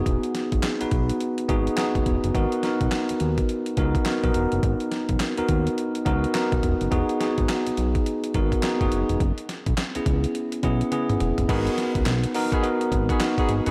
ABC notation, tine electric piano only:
X:1
M:4/4
L:1/16
Q:"Swing 16ths" 1/4=105
K:G#m
V:1 name="Tine electric piano"
[B,DFG]2 z3 [B,DFB]3 z2 [B,DFG] z [B,DFG]3 z | [B,DFA] z [B,DFA]4- [B,DFA] z3 [B,DFA] z [B,DFA] [B,DFA]3- | [B,DFA]2 z3 [B,DFA]3 z2 [B,DFA] z [B,DFA]3 z | [B,DFG] z [B,DFG]4- [B,DFG] z3 [B,DFA] z [B,DFG] [B,DFG]3 |
z4 z [B,CEG]3 z2 [B,CEG] z [B,CEG]3 z | [B,DFA]4 z2 [B,DFA] z [B,DFA]3 z [B,DFA]3 z |]